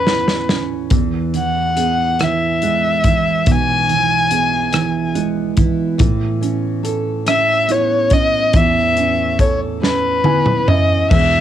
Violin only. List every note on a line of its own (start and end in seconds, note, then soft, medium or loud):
0.00 0.56 B4 medium
1.37 2.25 F#5 medium
2.24 3.52 E5 medium
3.51 5.17 G#5 medium
7.29 7.73 E5 medium
7.72 8.14 C#5 medium
8.12 8.57 D#5 medium
8.55 9.40 E5 medium
9.40 9.59 C#5 medium
9.83 10.70 B4 medium
10.68 11.11 D#5 medium
11.11 11.40 E5 medium